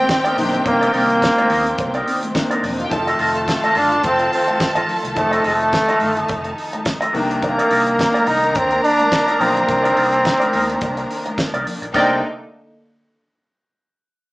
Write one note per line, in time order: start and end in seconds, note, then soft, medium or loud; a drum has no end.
0.00 0.32 C3 medium
0.00 2.87 D#3 medium
0.00 0.33 A#3 medium
0.00 2.87 A#3 medium
0.00 0.34 C4 loud
0.00 2.87 C4 loud
0.00 0.34 D4 medium
0.00 0.34 D#4 loud
0.00 2.31 G4 medium
0.00 2.31 G5 loud
0.09 muted clean electric guitar stroke medium
0.09 kick loud
0.09 snare loud
0.09 closed hi-hat medium
0.09 muted conga soft
0.24 0.36 D#4 medium
0.24 0.36 A#4 medium
0.24 0.37 D5 loud
0.24 closed hi-hat soft
0.24 muted conga soft
0.36 0.59 B1 loud
0.36 2.30 C3 medium
0.36 2.30 A#3 medium
0.36 2.31 D4 medium
0.36 2.31 D#4 medium
0.36 muted clean electric guitar stroke soft
0.36 open hi-hat medium
0.36 low conga medium
0.53 muted clean electric guitar stroke soft
0.53 closed hi-hat medium
0.65 0.88 C2 loud
0.65 0.92 A#3 loud
0.65 muted clean electric guitar stroke medium
0.65 kick loud
0.65 closed hi-hat medium
0.65 muted conga soft
0.65 low conga medium
0.81 0.93 D#4 medium
0.81 0.93 A#4 medium
0.81 0.94 D5 medium
0.81 closed hi-hat medium
0.81 muted conga soft
0.94 1.28 C2 medium
0.94 2.03 A#3 loud
0.94 1.07 D#4 medium
0.94 1.08 A#4 medium
0.94 1.08 D5 medium
0.94 open hi-hat medium
1.10 muted clean electric guitar stroke soft
1.10 closed hi-hat soft
1.10 high conga soft
1.22 muted clean electric guitar stroke medium
1.22 kick medium
1.22 snare loud
1.22 closed hi-hat medium
1.38 1.50 D#4 medium
1.38 1.51 A#4 medium
1.38 1.52 D5 medium
1.38 closed hi-hat soft
1.38 muted conga soft
1.38 high conga medium
1.50 1.72 D#2 medium
1.50 1.64 D#4 medium
1.50 1.65 A#4 medium
1.50 1.65 D#5 medium
1.50 open hi-hat medium
1.50 high conga medium
1.50 low conga medium
1.66 muted clean electric guitar stroke soft
1.66 closed hi-hat medium
1.78 2.00 C2 loud
1.78 muted clean electric guitar stroke soft
1.78 kick loud
1.78 closed hi-hat medium
1.78 muted conga soft
1.94 2.06 D#4 medium
1.94 2.07 A#4 medium
1.94 2.08 D5 medium
1.94 closed hi-hat soft
2.07 2.20 D#4 medium
2.07 2.21 A#4 medium
2.07 2.21 D5 medium
2.07 open hi-hat medium
2.23 muted clean electric guitar stroke soft
2.23 closed hi-hat medium
2.23 high conga medium
2.34 2.91 C3 medium
2.34 2.91 A#3 medium
2.34 2.91 D4 medium
2.34 2.90 D#4 medium
2.34 muted clean electric guitar stroke soft
2.34 kick loud
2.34 snare loud
2.34 closed hi-hat medium
2.50 2.57 A#3 medium
2.50 2.62 D#4 medium
2.50 2.57 A#4 medium
2.50 2.64 A#4 medium
2.50 2.64 D5 loud
2.50 closed hi-hat medium
2.50 muted conga soft
2.57 2.63 C4 medium
2.57 2.63 C5 medium
2.63 2.85 E1 loud
2.63 2.71 D4 medium
2.63 2.71 D5 medium
2.63 muted clean electric guitar stroke soft
2.63 open hi-hat medium
2.63 low conga medium
2.71 2.79 D#4 medium
2.71 2.79 D#5 medium
2.79 2.85 F4 medium
2.79 2.85 F5 medium
2.79 muted clean electric guitar stroke soft
2.79 closed hi-hat medium
2.85 2.91 G4 medium
2.85 2.91 G5 loud
2.90 3.13 F1 medium
2.90 7.10 D#3 medium
2.90 5.12 F3 medium
2.90 7.10 A3 medium
2.90 3.79 A3 medium
2.90 5.13 C4 medium
2.90 5.13 D#4 medium
2.90 5.15 F4 medium
2.90 6.82 A4 medium
2.90 5.14 A4 medium
2.90 6.82 A5 medium
2.90 muted clean electric guitar stroke soft
2.90 kick loud
2.90 closed hi-hat medium
2.90 muted conga soft
2.90 low conga medium
3.07 3.18 F4 medium
3.07 3.19 A4 medium
3.07 3.20 D#5 medium
3.07 closed hi-hat medium
3.19 3.54 F1 loud
3.19 3.33 F4 medium
3.19 3.34 A4 medium
3.19 3.34 D#5 medium
3.19 open hi-hat medium
3.35 muted clean electric guitar stroke medium
3.35 closed hi-hat soft
3.48 muted clean electric guitar stroke soft
3.48 kick medium
3.48 snare loud
3.48 closed hi-hat medium
3.64 3.75 F4 medium
3.64 3.76 A4 medium
3.64 3.77 D#5 medium
3.64 closed hi-hat medium
3.64 high conga medium
3.75 3.98 G1 loud
3.75 4.04 D4 loud
3.75 3.90 F4 medium
3.75 3.90 A4 medium
3.75 3.90 F5 medium
3.75 open hi-hat medium
3.75 high conga medium
3.92 muted clean electric guitar stroke soft
3.92 closed hi-hat medium
4.04 4.26 F1 loud
4.04 4.31 C4 loud
4.04 muted clean electric guitar stroke soft
4.04 kick loud
4.04 closed hi-hat medium
4.04 muted conga soft
4.19 muted clean electric guitar stroke medium
4.19 closed hi-hat soft
4.33 4.85 C4 loud
4.33 open hi-hat medium
4.48 muted clean electric guitar stroke medium
4.48 closed hi-hat medium
4.48 high conga medium
4.60 muted clean electric guitar stroke soft
4.60 kick loud
4.60 snare loud
4.60 closed hi-hat medium
4.75 4.86 A1 medium
4.75 4.87 F4 medium
4.75 4.88 A4 medium
4.75 4.88 D#5 loud
4.75 closed hi-hat medium
4.88 muted clean electric guitar stroke soft
4.88 open hi-hat medium
4.88 low conga medium
5.04 5.18 C2 medium
5.04 muted clean electric guitar stroke medium
5.04 closed hi-hat medium
5.15 5.39 F1 loud
5.15 7.09 F3 medium
5.15 5.43 A3 loud
5.15 7.10 C4 medium
5.15 7.12 D#4 medium
5.15 7.10 D#4 medium
5.15 7.11 A4 medium
5.15 muted clean electric guitar stroke soft
5.15 kick loud
5.15 closed hi-hat medium
5.15 muted conga soft
5.15 low conga medium
5.31 5.43 F4 medium
5.31 5.44 A4 medium
5.31 5.45 D#5 medium
5.31 closed hi-hat medium
5.44 5.80 F1 medium
5.44 6.54 A3 loud
5.44 5.58 F4 medium
5.44 5.59 A4 medium
5.44 5.58 D#5 medium
5.44 open hi-hat medium
5.59 muted clean electric guitar stroke medium
5.59 closed hi-hat soft
5.73 muted clean electric guitar stroke medium
5.73 kick loud
5.73 snare loud
5.73 closed hi-hat medium
5.73 muted conga soft
5.88 6.00 F4 medium
5.88 6.01 A4 medium
5.88 6.02 D#5 medium
5.88 closed hi-hat soft
5.88 high conga medium
6.00 6.24 G1 medium
6.00 6.15 F4 medium
6.00 6.15 A4 medium
6.00 6.16 F5 medium
6.00 open hi-hat medium
6.00 high conga medium
6.16 muted clean electric guitar stroke medium
6.16 closed hi-hat medium
6.28 6.51 F1 loud
6.28 muted clean electric guitar stroke soft
6.28 kick loud
6.28 closed hi-hat medium
6.28 muted conga soft
6.44 muted clean electric guitar stroke soft
6.44 closed hi-hat soft
6.44 muted conga soft
6.58 open hi-hat medium
6.73 muted clean electric guitar stroke medium
6.73 closed hi-hat medium
6.73 high conga medium
6.85 muted clean electric guitar stroke soft
6.85 kick loud
6.85 snare loud
6.85 closed hi-hat medium
6.85 muted conga soft
7.01 7.14 F4 medium
7.01 7.14 A4 medium
7.01 7.15 D#5 loud
7.01 closed hi-hat medium
7.01 muted conga soft
7.13 7.58 C2 loud
7.13 9.35 C3 medium
7.13 11.90 D#3 loud
7.13 9.37 D#3 medium
7.13 9.36 A#3 medium
7.13 11.90 A#3 medium
7.13 9.36 D4 medium
7.13 11.90 D4 loud
7.13 11.33 A#4 medium
7.13 11.33 A#5 medium
7.13 muted clean electric guitar stroke soft
7.13 open hi-hat medium
7.13 low conga medium
7.30 muted clean electric guitar stroke soft
7.30 closed hi-hat medium
7.42 8.29 A#3 loud
7.42 muted clean electric guitar stroke soft
7.42 kick loud
7.42 closed hi-hat medium
7.42 muted conga soft
7.42 low conga medium
7.58 7.69 D#4 medium
7.58 7.70 A#4 medium
7.58 7.71 D5 medium
7.58 closed hi-hat medium
7.58 muted conga soft
7.70 8.05 C2 medium
7.70 7.84 D#4 medium
7.70 7.85 A#4 medium
7.70 7.85 D5 medium
7.70 open hi-hat medium
7.86 muted clean electric guitar stroke soft
7.86 closed hi-hat soft
7.99 muted clean electric guitar stroke soft
7.99 kick loud
7.99 snare loud
7.99 closed hi-hat medium
7.99 muted conga soft
8.14 8.25 D#4 medium
8.14 8.26 A#4 medium
8.14 8.28 D5 loud
8.14 closed hi-hat medium
8.14 muted conga soft
8.14 high conga medium
8.26 8.56 C2 medium
8.26 8.40 D#4 medium
8.26 8.58 D#4 loud
8.26 8.41 A#4 medium
8.26 8.41 D#5 medium
8.26 open hi-hat medium
8.26 high conga medium
8.43 muted clean electric guitar stroke medium
8.43 closed hi-hat soft
8.55 8.78 D#2 loud
8.55 8.83 C4 loud
8.55 muted clean electric guitar stroke soft
8.55 kick loud
8.55 closed hi-hat medium
8.70 muted clean electric guitar stroke medium
8.70 closed hi-hat soft
8.70 muted conga soft
8.84 9.43 D4 loud
8.84 open hi-hat medium
8.99 muted clean electric guitar stroke medium
8.99 closed hi-hat medium
8.99 high conga medium
9.12 muted clean electric guitar stroke soft
9.12 kick loud
9.12 snare loud
9.12 closed hi-hat medium
9.27 9.38 D#4 medium
9.27 9.39 A#4 medium
9.27 9.38 D5 medium
9.27 closed hi-hat medium
9.27 muted conga soft
9.39 9.62 B1 loud
9.39 11.61 C3 medium
9.39 11.61 A#3 medium
9.39 11.38 C4 loud
9.39 11.62 D4 medium
9.39 9.57 D#4 medium
9.39 11.63 F4 medium
9.39 9.56 A#4 medium
9.39 9.54 D5 medium
9.39 open hi-hat medium
9.39 low conga medium
9.56 muted clean electric guitar stroke soft
9.56 closed hi-hat soft
9.68 9.91 C2 loud
9.68 muted clean electric guitar stroke soft
9.68 kick loud
9.68 closed hi-hat medium
9.68 low conga medium
9.84 9.95 D#4 medium
9.84 9.96 A#4 medium
9.84 9.97 D5 loud
9.84 closed hi-hat medium
9.84 muted conga soft
9.96 10.31 C2 loud
9.96 10.10 D#4 medium
9.96 10.10 A#4 medium
9.96 10.11 D5 medium
9.96 open hi-hat medium
10.12 muted clean electric guitar stroke soft
10.12 closed hi-hat medium
10.24 muted clean electric guitar stroke soft
10.24 kick loud
10.24 snare loud
10.24 closed hi-hat medium
10.24 muted conga soft
10.40 10.51 D#4 medium
10.40 10.52 A#4 medium
10.40 10.54 D5 medium
10.40 closed hi-hat medium
10.40 muted conga soft
10.40 high conga medium
10.53 10.75 D#2 medium
10.53 10.66 D#4 medium
10.53 10.67 A#4 medium
10.53 10.67 D#5 medium
10.53 open hi-hat medium
10.53 high conga medium
10.69 muted clean electric guitar stroke soft
10.69 closed hi-hat medium
10.81 11.03 C2 loud
10.81 muted clean electric guitar stroke soft
10.81 kick loud
10.81 closed hi-hat medium
10.81 muted conga soft
10.97 muted clean electric guitar stroke medium
10.97 closed hi-hat soft
11.11 open hi-hat medium
11.26 muted clean electric guitar stroke soft
11.26 closed hi-hat medium
11.26 high conga medium
11.38 muted clean electric guitar stroke soft
11.38 kick loud
11.38 snare loud
11.38 closed hi-hat medium
11.54 11.63 C2 medium
11.54 11.65 D#4 medium
11.54 11.65 A#4 medium
11.54 11.66 D5 medium
11.54 closed hi-hat medium
11.54 muted conga soft
11.65 muted clean electric guitar stroke soft
11.65 open hi-hat medium
11.65 low conga medium
11.82 11.91 A#1 medium
11.82 muted clean electric guitar stroke medium
11.82 closed hi-hat medium
11.94 12.20 C2 medium
11.94 12.20 C3 medium
11.94 12.20 D3 medium
11.94 12.20 A#3 medium
11.94 12.21 C4 medium
11.94 12.20 D4 medium
11.94 12.20 D#4 medium
11.94 12.12 D#4 medium
11.94 12.13 A#4 medium
11.94 12.20 D5 medium
11.94 12.13 D5 medium
11.94 12.20 G5 medium
11.94 kick loud
11.94 crash medium
11.94 high conga medium